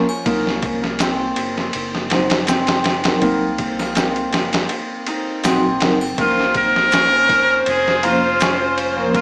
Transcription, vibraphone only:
0.25 F#3 C4 D#4 A#4
2.11 F#3 C4 D#4 C5
3.04 F#3 C4 D#4 A#4
3.22 F#3 C4 D#4 A#4
5.44 F#3 C4 D#4 F#4
5.81 F#3 C4 D#4 A#4
6.18 F3 A#3 C#4 A#4
8.03 F3 A#3 C#4 C5
8.97 F3 A#3 C#4 A#4
9.14 F3 A#3 C#4 A#4

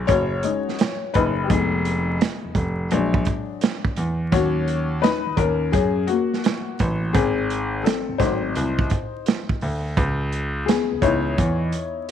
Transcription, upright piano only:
Already playing: G#4
0.07 F#4 C#5
0.43 G#3 C#4 D#4
1.14 D#4 B4
1.44 G4
1.48 G#3 B3 D#4 G#4
2.91 F#3 G#3 D4
4.32 F#3 A#3 C#4 F#4 C#5
5.02 D#4 B4
5.37 C#4 A#4
5.72 C#4 G#4
6.07 A#3 F#4
7.13 C4 G#4
7.84 C4 A4
8.18 F#3 A3 C4 D#4 C5
10.66 B3 G#4
11.02 E3 B3 D#4 E4 C#5

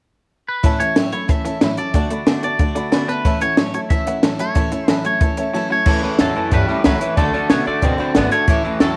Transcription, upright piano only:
0.64 C#5 E5 A5
0.81 E5
0.97 E5 G5
1.13 C#5 E5 B5
1.28 C#5 E5 A5
1.44 C#5 E5 A5
1.62 C#5 E5 B5
1.78 C#5 E5 A5
1.95 D5 F#5 A5
2.11 D5 F#5 B5
2.27 D5 F#5 A5
2.44 D5 F#5 A5
2.60 D5 F#5 A5
2.75 D5 F#5 B5
2.92 D5 F#5 B5
3.08 D5 F#5 A5
3.25 C#5 E5 A5
3.41 C#5 E5 F#5
3.58 C#5 E5 A5
3.74 C#5 E5 A5
3.90 C#5 E5 A5
4.06 C#5 E5 F#5
4.22 C#5 E5 A5
4.39 C#5 E5 A5
4.55 C#5 E5 A5
4.71 C#5 E5 A5
4.87 C#5 E5 A5
5.04 C#5 E5 A5
5.21 C#5 E5 A5
5.37 C#5 E5 A5
5.53 C#5 E5 A5
5.70 C#5 E5 A5
5.87 C#5 E5 A5
6.03 C#5 E5 A5
6.20 C#5 E5 A5
6.35 C#5 E5 A5
6.51 C#5 E5 A5
6.67 C#5 E5 A5
6.84 C#5 E5 A5
7.00 C#5 E5 B5
7.16 D5 F#5 A5
7.33 D5
7.49 D5 F#5 A5
7.65 D5 F#5 A5
7.82 D5 F#5 A5
7.98 D5 F#5 B5
8.15 D5 F#5 A5
8.31 D5 F#5 A5
8.48 C#5 E5 A5
8.65 E5 A5
8.82 G5

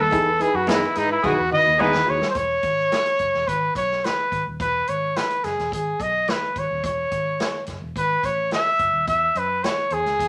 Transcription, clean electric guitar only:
0.67 E3 B3 D#4 G#4
1.79 E3 B3 D#4 G#4

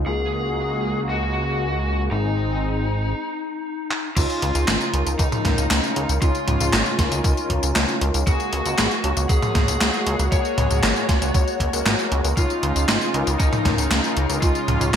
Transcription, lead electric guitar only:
0.06 G#4
1.09 F#4
2.11 D#4
4.17 F4
5.19 D#4
6.22 F4
8.27 F#4
9.29 G#4
10.32 C#5
12.37 F4
13.40 D#4
14.42 F4

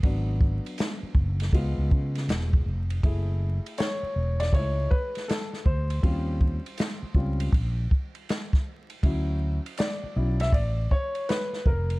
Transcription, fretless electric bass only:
0.04 G#1
1.03 muted fretless electric bass stroke
1.15 F#1
1.53 C#2
1.78 C#2
1.92 C#3
2.28 E1
2.66 F1
3.04 F#1
4.03 muted fretless electric bass stroke
4.16 E1
4.53 C#2
5.66 D2
6.03 D#2
7.03 muted fretless electric bass stroke
7.15 C#2
7.53 A#1
9.03 D2
10.03 muted fretless electric bass stroke
10.16 B1
10.53 A1
11.66 F1

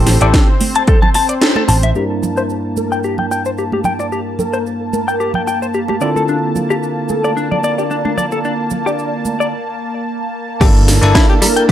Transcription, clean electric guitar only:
0.22 D5
0.76 A5
0.88 A4
1.02 A5
1.15 A5
1.29 D5
1.42 A4
1.56 A4
1.69 A5
1.83 E5
1.96 G4
2.37 C5
2.92 G5
3.04 G4
3.19 G5
3.31 G5
3.46 C5
3.58 G4
3.73 G4
3.85 G5
4.00 D5
4.12 G4
4.53 C5
5.08 G5
5.20 G4
5.35 G5
5.47 G5
5.62 C5
5.74 G4
5.89 G4
6.01 D5
6.16 A4
6.29 D4
6.70 G4
7.24 D5
7.37 D4
7.51 D5
7.64 D5
7.78 G4
7.91 D4
8.05 D4
8.18 D5
8.32 A4
8.45 D4
8.86 G4
9.40 D5
10.61 G4
11.15 E4
11.29 G4
11.42 G3
11.56 G5

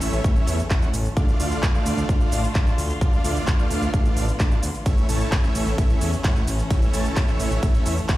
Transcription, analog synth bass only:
0.01 A1
0.13 A1
0.24 A1
0.47 E2
0.71 A1
0.94 A1
1.17 D2
1.40 D2
1.63 D2
1.86 D2
1.97 D2
2.09 D2
2.32 A1
2.55 D2
2.78 D2
3.01 D2
3.24 D2
3.48 D2
3.71 D2
3.82 D2
3.94 D2
4.17 A1
4.40 D2
4.63 D2
4.86 A1
5.09 A1
5.32 A1
5.55 A1
5.67 A1
5.78 A1
6.01 E2
6.24 A1
6.48 A1
6.71 A1
6.94 A1
7.17 A1
7.40 A1
7.51 A1
7.63 A1
7.86 E2
8.09 A1

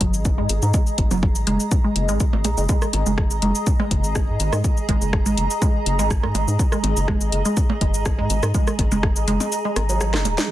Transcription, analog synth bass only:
0.01 F#1
0.14 G#1
0.38 G#2
0.50 G#1
0.62 G#2
0.98 G#1
1.11 F#1
1.36 G#1
1.47 F#1
1.96 F#1
2.09 G#1
2.33 G#1
2.45 A#1
2.58 F#1
2.94 G#1
3.06 F#1
3.31 G#1
3.42 F#1
3.91 F#1
4.04 G#1
4.28 G#2
4.40 G#1
4.53 G#2
4.89 G#1
5.01 F#1
5.26 G#1
5.37 F#1
5.86 F#1
5.99 G#1
6.23 G#2
6.35 G#1
6.48 G#2
6.84 G#1
6.97 F#1
7.21 G#1
7.32 F#1
7.81 F#1
7.94 G#1
8.18 G#2
8.30 G#1
8.43 G#2
8.79 G#1
8.92 F#1
9.16 G#1
9.27 F#1
9.76 G#1
10.14 F#1
10.25 D#1

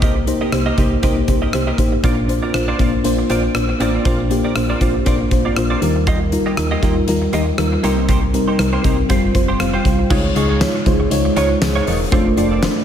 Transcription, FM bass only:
Already playing: C2
0.53 C2
0.78 C2
1.03 C2
1.28 C2
1.53 C2
1.78 A1
2.04 A#1
2.54 A#1
2.79 A#1
3.04 A#1
3.30 A#1
3.55 A#1
3.80 A1
4.05 A#1
4.56 A#1
4.81 A#1
5.06 A#1
5.31 A#1
5.57 A#1
5.82 D#2
6.58 D#2
6.83 D#2
7.08 D#2
7.33 D#2
7.58 D#2
7.84 C2
8.59 C2
8.84 C2
9.10 F1
9.35 F1
9.60 F1
9.85 C2
10.11 C#2
10.36 C#2
10.86 C#2
11.11 C#2
11.37 C#2
11.62 C#2
11.87 E1
12.12 F1
12.38 F1

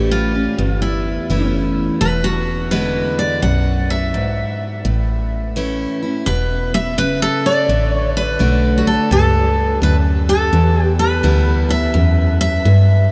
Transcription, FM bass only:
Already playing: A1
0.59 G1
1.30 F#1
2.01 E1
3.43 B1
4.85 A1
6.27 E1
7.69 A1
8.40 B1
9.11 C#2
9.82 D2
10.53 E2
11.24 D2
11.95 E2
12.65 G2

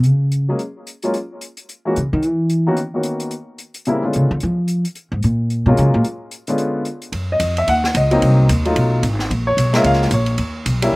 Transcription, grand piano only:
0.49 F#3 G#3 A#3 C#4 G#4
1.03 F#3 G#3 A#3 C#4 F4
1.85 E3 G#3 A#3 C#4 F#4
2.67 D#3 A#3 B3 C#4 F#4
2.94 D#3 A#3 B3 C#4 F#4
3.87 C#3 G3 A#3 C4 E4
4.03 D3 G#3 B3 C#4 F4
5.67 F#3 G#3 A#3 C#4 F4
6.48 D3 G#3 B3 C#4 F4
7.32 D#5
7.58 E5
7.69 F#5
7.97 D#5
8.11 F#3 A#3 C4 D#4
8.66 F#3 A3 D#4 F4
9.47 C#5
9.73 G#3 A#3 C#4 F4 E5
9.82 E5
9.86 F5
10.14 C#5
10.82 G3 A#3 C#4 E4

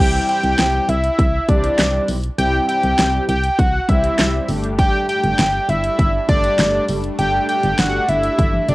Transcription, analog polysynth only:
0.00 G3 C4 E4 G4
1.49 G3 C4 E4 G4
2.39 G3 C4 E4 G4
3.88 G3 C4 E4 G4
4.48 G3 A3 D4 G4
6.29 G3 A3 D4 G4
7.19 G3 A3 D4 G4
8.69 G3 A3 D4 G4

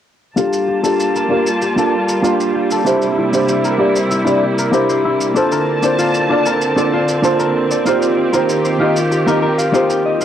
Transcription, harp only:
0.36 F4
0.67 G4
0.83 A4
1.15 A#4
1.31 F4
1.62 G4
1.78 A4
2.08 A#4
2.24 F4
2.55 G4
2.72 A4
3.03 C5
3.18 E4
3.49 G4
3.65 A#4
3.95 C5
4.11 E4
4.43 G4
4.59 A#4
4.89 C5
5.05 E4
5.36 A4
5.52 A#4
5.83 D5
5.98 F4
6.30 A4
6.46 A#4
6.78 D5
6.93 F4
7.24 A4
7.39 A#4
7.71 D5
7.86 F4
8.17 G4
8.33 A#4
8.65 C5
8.80 F4
9.11 G4
9.27 A#4
9.42 A#4
9.58 F5
9.73 F4
9.90 G5
10.05 D#5
10.21 F4

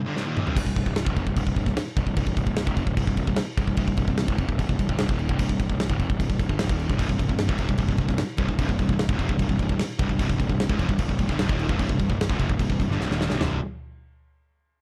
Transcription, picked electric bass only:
0.56 C1
0.66 C1
0.76 C1
0.86 C1
1.06 C#1
1.16 F1
1.27 C1
1.36 C1
1.46 C1
1.56 C1
1.66 C1
1.97 C1
2.06 C1
2.17 C1
2.27 C1
2.36 C1
2.46 C1
2.67 C#1
2.77 F1
2.86 C1
2.97 C1
3.07 C1
3.18 C1
3.27 C1
3.57 C1
3.67 C1
3.77 C1
3.87 C1
3.97 C1
4.08 C1
4.28 C#1
4.38 F1
4.48 C1
4.59 C1
4.69 C1
4.79 C1
4.89 G1
4.99 C1
5.09 D#1
5.29 C1
5.39 C1
5.49 C1
5.59 C1
5.70 C1
5.90 C#1
5.99 F1
6.09 C1
6.19 C1
6.29 C1
6.39 C1
6.49 G1
6.62 C1
6.70 D#1
6.89 C1
6.99 C1
7.09 C1
7.19 C1
7.29 C1
7.49 C#1
7.59 F1
7.69 C1
7.78 C1
7.88 C1
7.98 C1
8.09 C1
8.38 C1
8.49 C1
8.59 C1
8.68 C1
8.79 C1
8.89 C1
9.09 C#1
9.18 F1
9.29 C1
9.39 C1
9.49 C1
9.59 C1
9.69 C1
9.99 C1
10.10 C1
10.19 C1
10.29 C1
10.39 C1
10.50 C1
10.69 C#1
10.79 F1
10.89 C1
10.98 C1
11.09 C1
11.19 C1
11.29 G1
11.40 C1
11.49 D#1
11.69 C1
11.80 C1
11.90 C1
12.00 C1
12.10 C1
12.30 C#1
12.39 F1
12.49 C1
12.59 C1
12.70 C1
12.79 C1
12.89 G1
13.00 C1
13.10 D#1
13.30 C1
13.39 C1

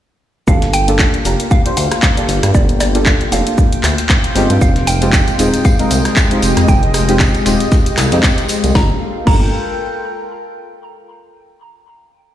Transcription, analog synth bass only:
0.48 G1
1.25 F1
1.77 D2
2.29 G1
2.43 G2
2.55 G1
3.32 F1
3.84 D2
4.36 G1
4.50 G2
4.61 F1
5.39 D#1
5.91 C2
6.42 F1
6.57 F2
6.68 F1
7.46 D#1
7.98 C2
8.12 F2
8.64 C2
8.75 G1
9.27 G1

